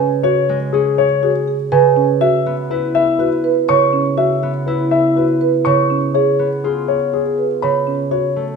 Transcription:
Already playing: harp C#3 G#3 C#4 E4
0.00 marimba C#4
0.23 marimba F#4, grand piano C#5
0.49 harp G#3
0.73 harp C#4, grand piano G#4
0.98 grand piano C#5
1.23 marimba F#4, grand piano G#4
1.48 marimba G#4
1.72 harp C#3, marimba B4, grand piano G#5
1.96 marimba C#4
2.21 marimba F#4, grand piano E5
2.46 harp B3
2.70 harp E4, grand piano B4
2.95 grand piano E5
3.19 marimba F#4, grand piano B4
3.44 marimba B4
3.69 harp C#3, marimba C#5, grand piano C#6
3.93 marimba C#4
4.18 marimba F#4, grand piano E5
4.43 harp B3
4.66 harp E4, grand piano B4
4.91 grand piano E5
5.16 marimba F#4, grand piano B4
5.41 marimba B4
5.65 harp C#3, marimba C#5, grand piano C#6
5.90 marimba C#4
6.14 marimba G#4, grand piano C#5
6.39 harp B3
6.64 harp F4, grand piano G#4
6.88 grand piano C#5
7.13 grand piano G#4, marimba G#4
7.38 marimba B4
7.62 harp C#3, marimba C#5, grand piano B5
7.87 marimba C#4
8.11 marimba F#4, grand piano C#5
8.36 harp A3

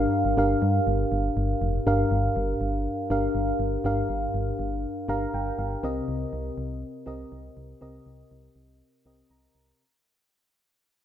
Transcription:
Already playing: fm electric piano G2 D4 G4 A#4 F5
0.25 fm bass G1
0.37 fm bass G1, fm electric piano D4 G4 A#4 F5
0.62 fm bass G2
0.87 fm bass G1
1.12 fm bass G1
1.37 fm bass G1
1.62 fm bass F1
1.87 fm bass G1, fm electric piano G2 D4 G4 A#4 F5
2.11 fm bass G1
2.36 fm bass G1
2.61 fm bass G1
3.10 fm bass G1, fm electric piano D4 G4 A#4 F5
3.35 fm bass G1
3.59 fm bass G1
3.84 fm bass G1, fm electric piano G2 D4 G4 A#4 F5
4.09 fm bass G1
4.34 fm bass G1
4.59 fm bass G1
5.08 fm bass G1, fm electric piano D4 G4 A#4 F5 A#5
5.34 fm bass G1, fm electric piano G5
5.59 fm bass G1, fm electric piano F5
5.83 fm bass C2, fm electric piano C3 C4 G4 A#4 D#5
6.08 fm bass C2
6.33 fm bass C2
6.58 fm bass C2
7.06 fm bass C2, fm electric piano C4 G4 A#4 D#5
7.32 fm bass C2
7.57 fm bass C2
7.81 fm bass C2, fm electric piano C3 C4 G4 A#4 D#5
8.06 fm bass C2
8.31 fm bass C2
8.56 fm bass C2
9.05 fm bass C2, fm electric piano C4 G4 A#4 D#5
9.30 fm bass C2, fm electric piano A#5
9.55 fm bass C2

